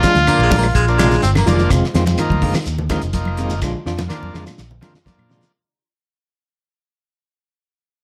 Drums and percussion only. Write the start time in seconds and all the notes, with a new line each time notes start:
0.03 kick, snare, closed hi-hat, high conga, shekere
0.15 snare, closed hi-hat, high conga, shekere
0.27 closed hi-hat, claves, shekere
0.39 shekere
0.51 kick, open hi-hat, high conga, low conga, shekere
0.62 claves, shekere
0.75 kick, closed hi-hat, shekere
0.88 shekere
0.99 snare, closed hi-hat, high conga, claves, shekere
1.12 snare, low conga, shekere
1.22 closed hi-hat, shekere
1.35 snare, high conga, claves, shekere
1.47 closed hi-hat, high conga, low conga, shekere
1.59 closed hi-hat, shekere
1.70 kick, closed hi-hat, high conga, low conga, claves, shekere
1.84 snare
1.95 snare, closed hi-hat, shekere
2.06 snare, high conga, shekere
2.18 closed hi-hat, claves, shekere
2.30 kick, high conga
2.42 kick, open hi-hat, shekere
2.54 snare, claves, shekere
2.66 snare, closed hi-hat, high conga, shekere
2.79 low conga
2.89 kick, snare, closed hi-hat, high conga, claves, shekere
3.02 closed hi-hat, shekere
3.13 kick, closed hi-hat, high conga, shekere
3.25 high conga, claves
3.37 closed hi-hat, shekere
3.50 low conga, shekere
3.62 kick, snare, high conga, low conga, claves, shekere
3.86 snare, shekere
3.98 snare, high conga, shekere
4.10 snare, high conga, claves, shekere
4.23 high conga
4.34 snare, shekere
4.47 snare, high conga, claves, shekere
4.58 snare, high conga, shekere
4.71 low conga
4.82 snare, high conga, claves, shekere
4.95 snare, shekere
5.06 kick, snare, high conga, shekere
5.19 high conga, claves
5.31 snare, shekere
5.43 snare, shekere